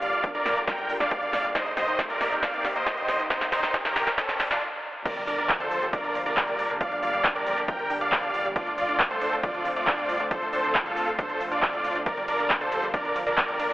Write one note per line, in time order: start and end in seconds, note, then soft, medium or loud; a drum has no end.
0.00 0.11 G1 loud
0.00 1.51 D3 medium
0.00 0.06 F3 medium
0.00 1.52 G3 medium
0.00 1.52 A#3 medium
0.00 1.52 F4 loud
0.00 0.27 D5 medium
0.00 0.27 F5 medium
0.00 open hi-hat loud
0.00 riser medium
0.00 shaker medium
0.13 0.22 G1 medium
0.13 0.17 G3 medium
0.13 closed hi-hat soft
0.13 shaker soft
0.24 0.30 D4 medium
0.24 kick loud
0.24 closed hi-hat medium
0.24 shaker soft
0.35 0.44 F1 medium
0.35 0.44 D4 medium
0.35 0.59 A#4 medium
0.35 0.59 D5 loud
0.35 closed hi-hat soft
0.46 0.55 G1 medium
0.46 0.55 F3 medium
0.46 snare medium
0.46 open hi-hat loud
0.46 shaker medium
0.57 0.66 G1 medium
0.57 0.66 D4 medium
0.57 closed hi-hat soft
0.57 shaker soft
0.68 0.71 F3 medium
0.68 0.92 A#4 medium
0.68 0.92 G5 medium
0.68 kick loud
0.68 snare medium
0.68 closed hi-hat medium
0.68 shaker soft
0.78 0.88 G1 medium
0.78 0.82 G3 medium
0.78 closed hi-hat soft
0.89 0.99 G1 loud
0.89 0.96 D4 medium
0.89 open hi-hat loud
0.89 shaker medium
1.00 1.10 G1 medium
1.00 1.10 D4 medium
1.00 1.46 D5 medium
1.00 1.46 F5 medium
1.00 snare medium
1.00 closed hi-hat soft
1.00 shaker soft
1.11 1.21 F3 medium
1.11 kick loud
1.11 closed hi-hat medium
1.11 shaker soft
1.22 1.32 G1 medium
1.22 1.32 D4 medium
1.22 closed hi-hat soft
1.33 1.42 G1 medium
1.33 1.37 F3 medium
1.33 snare medium
1.33 open hi-hat loud
1.33 shaker medium
1.44 1.53 G1 medium
1.44 1.48 G3 medium
1.44 closed hi-hat soft
1.44 shaker soft
1.55 4.59 D#3 medium
1.55 4.59 A#3 medium
1.55 3.29 C4 medium
1.55 1.62 D#4 medium
1.55 4.59 G4 loud
1.55 1.72 C5 medium
1.55 1.72 D#5 loud
1.55 kick loud
1.55 snare medium
1.55 closed hi-hat loud
1.55 shaker soft
1.66 1.75 C2 medium
1.66 1.76 D#4 medium
1.66 closed hi-hat soft
1.77 1.86 C2 loud
1.77 1.87 G3 medium
1.77 2.02 C5 medium
1.77 2.02 D#5 loud
1.77 snare medium
1.77 open hi-hat loud
1.77 shaker medium
1.88 1.97 C2 medium
1.88 1.98 D#4 medium
1.88 closed hi-hat soft
1.88 shaker soft
1.99 2.03 G3 medium
1.99 kick loud
1.99 snare medium
1.99 closed hi-hat medium
1.99 shaker soft
2.10 2.19 A#1 medium
2.10 2.14 A#3 medium
2.10 2.35 A#4 medium
2.10 2.35 D5 medium
2.10 closed hi-hat soft
2.21 2.30 C2 loud
2.21 2.27 D#4 medium
2.21 snare medium
2.21 open hi-hat loud
2.21 shaker medium
2.32 2.41 C2 medium
2.32 2.42 D#4 medium
2.32 closed hi-hat soft
2.32 shaker soft
2.43 2.52 G3 medium
2.43 2.67 D5 medium
2.43 2.67 F5 medium
2.43 kick loud
2.43 snare medium
2.43 closed hi-hat medium
2.43 shaker soft
2.54 2.63 C2 medium
2.54 2.63 D#4 medium
2.54 closed hi-hat soft
2.65 2.74 C2 loud
2.65 2.69 G3 medium
2.65 snare medium
2.65 open hi-hat loud
2.65 shaker medium
2.76 2.85 C2 medium
2.76 2.79 A#3 medium
2.76 3.22 C5 medium
2.76 3.22 D#5 medium
2.76 closed hi-hat soft
2.76 shaker soft
2.87 2.93 D#4 medium
2.87 kick loud
2.87 snare medium
2.87 closed hi-hat loud
2.87 shaker soft
2.97 3.07 C2 medium
2.97 3.07 D#4 medium
2.97 closed hi-hat soft
3.08 3.18 C2 medium
3.08 3.18 G3 medium
3.08 snare medium
3.08 open hi-hat loud
3.08 shaker medium
3.19 3.29 C2 medium
3.19 3.29 D#4 medium
3.19 closed hi-hat soft
3.19 shaker soft
3.30 3.34 G3 medium
3.30 4.60 D4 medium
3.30 3.47 D#4 medium
3.30 3.47 C5 loud
3.30 kick loud
3.30 snare loud
3.30 closed hi-hat loud
3.30 shaker soft
3.41 3.51 C2 medium
3.41 3.45 A#3 medium
3.41 snare medium
3.41 closed hi-hat soft
3.52 3.61 C2 loud
3.52 3.59 D#4 medium
3.52 3.77 D#4 medium
3.52 3.77 C5 loud
3.52 snare loud
3.52 open hi-hat loud
3.52 shaker medium
3.63 3.72 C2 medium
3.63 3.73 D#4 medium
3.63 snare medium
3.63 closed hi-hat soft
3.63 shaker soft
3.74 3.84 G3 medium
3.74 kick loud
3.74 snare medium
3.74 closed hi-hat loud
3.74 shaker soft
3.85 3.94 A#1 medium
3.85 3.95 D#4 medium
3.85 4.10 G4 medium
3.85 4.10 A#4 medium
3.85 snare medium
3.85 closed hi-hat soft
3.96 4.05 C2 loud
3.96 4.00 G3 medium
3.96 snare loud
3.96 open hi-hat loud
3.96 shaker medium
4.07 4.16 C2 loud
4.07 4.11 A#3 medium
4.07 snare medium
4.07 closed hi-hat soft
4.07 shaker soft
4.18 4.43 C4 medium
4.18 4.24 D#4 medium
4.18 4.43 A4 loud
4.18 kick loud
4.18 snare loud
4.18 closed hi-hat loud
4.18 shaker soft
4.29 4.38 C2 medium
4.29 4.39 D#4 medium
4.29 snare medium
4.29 closed hi-hat soft
4.40 4.49 C2 loud
4.40 4.44 G3 medium
4.40 snare loud
4.40 open hi-hat loud
4.40 shaker medium
4.51 4.60 C2 medium
4.51 4.60 A#3 medium
4.51 4.62 D4 medium
4.51 4.62 F4 medium
4.51 snare medium
4.51 closed hi-hat soft
4.51 shaker soft
5.05 13.73 D3 medium
5.05 5.09 F3 medium
5.05 8.52 G3 medium
5.05 8.52 A#3 medium
5.05 6.79 F4 loud
5.05 5.22 A#4 medium
5.05 5.22 D5 loud
5.05 kick loud
5.05 closed hi-hat loud
5.05 crash loud
5.05 impact medium
5.05 shaker soft
5.16 5.26 G1 medium
5.16 5.20 G3 medium
5.16 closed hi-hat soft
5.27 5.37 G1 loud
5.27 5.34 D4 medium
5.27 5.52 A#4 medium
5.27 5.52 D5 medium
5.27 open hi-hat loud
5.27 shaker medium
5.38 5.48 G1 medium
5.38 5.48 D4 medium
5.38 closed hi-hat soft
5.38 shaker soft
5.49 5.59 F3 medium
5.49 kick loud
5.49 clap loud
5.49 closed hi-hat loud
5.49 shaker soft
5.60 5.70 F1 medium
5.60 5.70 D4 medium
5.60 5.85 A4 medium
5.60 5.85 C5 medium
5.60 closed hi-hat soft
5.71 5.80 G1 loud
5.71 5.75 F3 medium
5.71 open hi-hat loud
5.71 shaker medium
5.82 5.91 G1 loud
5.82 5.86 G3 medium
5.82 closed hi-hat soft
5.82 shaker soft
5.93 6.00 D4 medium
5.93 6.18 A#4 medium
5.93 6.18 D5 medium
5.93 kick loud
5.93 closed hi-hat loud
5.93 shaker soft
6.04 6.13 G1 medium
6.04 6.14 D4 medium
6.04 closed hi-hat soft
6.15 6.24 G1 loud
6.15 6.25 F3 medium
6.15 open hi-hat loud
6.15 shaker medium
6.26 6.35 G1 medium
6.26 6.36 D4 medium
6.26 6.72 A#4 medium
6.26 6.72 D5 loud
6.26 closed hi-hat soft
6.26 shaker soft
6.37 6.41 F3 medium
6.37 kick loud
6.37 clap loud
6.37 closed hi-hat loud
6.37 shaker soft
6.48 6.57 G1 medium
6.48 6.52 G3 medium
6.48 closed hi-hat soft
6.59 6.68 F1 medium
6.59 6.65 D4 medium
6.59 open hi-hat loud
6.59 shaker medium
6.70 6.79 G1 medium
6.70 6.79 D4 medium
6.70 closed hi-hat soft
6.70 shaker soft
6.81 6.90 F3 medium
6.81 8.54 G4 medium
6.81 6.97 D5 medium
6.81 6.97 F5 loud
6.81 kick loud
6.81 closed hi-hat loud
6.81 shaker soft
6.92 7.01 G1 medium
6.92 7.01 D4 medium
6.92 closed hi-hat soft
7.03 7.12 G1 loud
7.03 7.07 F3 medium
7.03 7.27 D5 medium
7.03 7.27 F5 loud
7.03 open hi-hat loud
7.03 shaker medium
7.14 7.23 G1 medium
7.14 7.17 G3 medium
7.14 closed hi-hat soft
7.14 shaker soft
7.24 7.31 D4 medium
7.24 kick loud
7.24 clap loud
7.24 closed hi-hat loud
7.24 shaker soft
7.35 7.45 F1 medium
7.35 7.45 D4 medium
7.35 7.60 A#4 medium
7.35 7.60 D5 loud
7.35 closed hi-hat soft
7.46 7.56 G1 loud
7.46 7.56 F3 medium
7.46 open hi-hat loud
7.46 shaker medium
7.57 7.67 G1 loud
7.57 7.67 D4 medium
7.57 closed hi-hat soft
7.57 shaker soft
7.68 7.72 F3 medium
7.68 7.93 A#4 medium
7.68 7.93 G5 medium
7.68 kick loud
7.68 closed hi-hat medium
7.68 shaker soft
7.79 7.88 G1 medium
7.79 7.83 G3 medium
7.79 closed hi-hat soft
7.90 7.99 G1 loud
7.90 7.97 D4 medium
7.90 open hi-hat loud
7.90 shaker medium
8.01 8.10 G1 medium
8.01 8.11 D4 medium
8.01 8.47 D5 medium
8.01 8.47 F5 loud
8.01 closed hi-hat soft
8.01 shaker soft
8.12 8.22 F3 medium
8.12 kick loud
8.12 clap loud
8.12 closed hi-hat loud
8.12 shaker soft
8.23 8.32 G1 medium
8.23 8.33 D4 medium
8.23 closed hi-hat soft
8.34 8.43 F1 loud
8.34 8.38 F3 medium
8.34 open hi-hat loud
8.34 shaker medium
8.45 8.54 G1 medium
8.45 8.49 G3 medium
8.45 closed hi-hat soft
8.45 shaker soft
8.56 12.03 A3 medium
8.56 12.03 C4 medium
8.56 8.62 D4 medium
8.56 13.73 F4 medium
8.56 8.72 F4 medium
8.56 8.72 D5 loud
8.56 kick loud
8.56 closed hi-hat medium
8.56 shaker soft
8.67 8.76 D2 medium
8.67 8.77 D4 medium
8.67 closed hi-hat soft
8.78 8.87 D2 loud
8.78 8.87 F3 medium
8.78 9.03 F4 medium
8.78 9.03 D5 loud
8.78 open hi-hat loud
8.78 shaker medium
8.89 8.98 D2 medium
8.89 8.98 D4 medium
8.89 closed hi-hat soft
8.89 shaker soft
9.00 kick loud
9.00 clap loud
9.00 closed hi-hat medium
9.00 shaker soft
9.11 9.20 C2 medium
9.11 9.15 A3 medium
9.11 9.35 A4 medium
9.11 9.35 C5 medium
9.11 closed hi-hat soft
9.21 9.31 D2 loud
9.21 9.28 D4 medium
9.21 open hi-hat loud
9.21 shaker medium
9.32 9.42 D2 medium
9.32 9.42 D4 medium
9.32 closed hi-hat soft
9.32 shaker soft
9.43 9.53 F3 medium
9.43 9.68 F4 medium
9.43 9.68 D5 medium
9.43 kick loud
9.43 closed hi-hat medium
9.43 shaker soft
9.54 9.64 D2 medium
9.54 9.64 D4 medium
9.54 closed hi-hat soft
9.65 9.75 D2 loud
9.65 9.69 F3 medium
9.65 open hi-hat loud
9.65 shaker medium
9.76 9.86 D2 medium
9.76 9.80 A3 medium
9.76 10.22 F4 medium
9.76 10.22 D5 medium
9.76 closed hi-hat soft
9.76 shaker soft
9.87 9.94 D4 medium
9.87 kick loud
9.87 clap loud
9.87 closed hi-hat medium
9.87 shaker soft
9.98 10.07 D2 medium
9.98 10.08 D4 medium
9.98 closed hi-hat soft
10.09 10.18 C2 loud
10.09 10.19 F3 medium
10.09 open hi-hat loud
10.09 shaker medium
10.20 10.29 D2 medium
10.20 10.30 D4 medium
10.20 closed hi-hat soft
10.20 shaker soft
10.31 10.35 F3 medium
10.31 10.48 A4 medium
10.31 10.48 C5 loud
10.31 kick loud
10.31 closed hi-hat medium
10.31 shaker soft
10.42 10.51 D2 medium
10.42 10.46 A3 medium
10.42 closed hi-hat soft
10.53 10.62 D2 loud
10.53 10.59 D4 medium
10.53 10.78 A4 medium
10.53 10.78 C5 medium
10.53 open hi-hat loud
10.53 shaker medium
10.64 10.73 D2 medium
10.64 10.74 D4 medium
10.64 closed hi-hat soft
10.64 shaker soft
10.75 10.85 F3 medium
10.75 kick loud
10.75 clap loud
10.75 closed hi-hat medium
10.75 shaker soft
10.86 10.95 C2 medium
10.86 10.96 D4 medium
10.86 11.10 F4 medium
10.86 11.10 A4 medium
10.86 closed hi-hat soft
10.97 11.06 D2 loud
10.97 11.01 F3 medium
10.97 open hi-hat loud
10.97 shaker medium
11.08 11.17 D2 medium
11.08 11.12 A3 medium
11.08 closed hi-hat soft
11.08 shaker soft
11.19 11.25 D4 medium
11.19 11.43 A4 medium
11.19 11.43 C5 loud
11.19 kick loud
11.19 closed hi-hat medium
11.19 shaker soft
11.30 11.39 D2 medium
11.30 11.39 D4 medium
11.30 closed hi-hat soft
11.41 11.50 D2 loud
11.41 11.50 F3 medium
11.41 open hi-hat loud
11.41 shaker medium
11.51 11.61 D#2 medium
11.51 11.61 D4 medium
11.51 11.98 F4 medium
11.51 11.98 D5 loud
11.51 closed hi-hat soft
11.51 shaker soft
11.62 11.66 F3 medium
11.62 kick loud
11.62 clap loud
11.62 closed hi-hat medium
11.62 shaker soft
11.73 11.83 D2 medium
11.73 11.77 A3 medium
11.73 closed hi-hat soft
11.84 11.94 D2 loud
11.84 11.91 D4 medium
11.84 open hi-hat loud
11.84 shaker medium
11.95 12.05 D2 medium
11.95 12.05 D4 medium
11.95 closed hi-hat soft
11.95 shaker soft
12.06 12.10 F3 medium
12.06 13.73 G3 medium
12.06 13.73 A#3 medium
12.06 12.23 A#4 medium
12.06 12.23 D5 loud
12.06 kick loud
12.06 closed hi-hat medium
12.06 ride medium
12.06 shaker soft
12.17 12.26 G1 medium
12.17 12.21 G3 medium
12.17 closed hi-hat soft
12.28 12.37 G1 loud
12.28 12.35 D4 medium
12.28 12.53 A#4 medium
12.28 12.53 D5 medium
12.28 open hi-hat loud
12.28 ride medium
12.28 shaker medium
12.39 12.48 G1 medium
12.39 12.49 D4 medium
12.39 closed hi-hat soft
12.39 shaker soft
12.50 12.60 F3 medium
12.50 kick loud
12.50 clap loud
12.50 closed hi-hat medium
12.50 ride medium
12.50 shaker soft
12.61 12.70 F1 medium
12.61 12.71 D4 medium
12.61 12.86 A4 medium
12.61 12.86 C5 medium
12.61 closed hi-hat soft
12.72 12.81 G1 loud
12.72 12.76 F3 medium
12.72 open hi-hat loud
12.72 ride medium
12.72 shaker medium
12.83 12.92 G1 loud
12.83 12.87 G3 medium
12.83 closed hi-hat soft
12.83 shaker soft
12.94 13.00 D4 medium
12.94 13.19 A#4 medium
12.94 13.19 D5 loud
12.94 kick loud
12.94 closed hi-hat medium
12.94 ride medium
12.94 shaker soft
13.05 13.14 G1 medium
13.05 13.14 D4 medium
13.05 closed hi-hat soft
13.16 13.25 G1 loud
13.16 13.25 F3 medium
13.16 open hi-hat loud
13.16 ride medium
13.16 shaker medium
13.27 13.36 G1 loud
13.27 13.36 D4 medium
13.27 13.73 A#4 medium
13.27 13.73 D5 loud
13.27 closed hi-hat soft
13.27 shaker soft
13.38 13.42 F3 medium
13.38 kick loud
13.38 clap loud
13.38 closed hi-hat medium
13.38 ride medium
13.38 shaker soft
13.49 13.58 G1 medium
13.49 13.52 G3 medium
13.49 closed hi-hat soft
13.59 13.69 F1 loud
13.59 13.66 D4 medium
13.59 open hi-hat loud
13.59 ride medium
13.59 shaker medium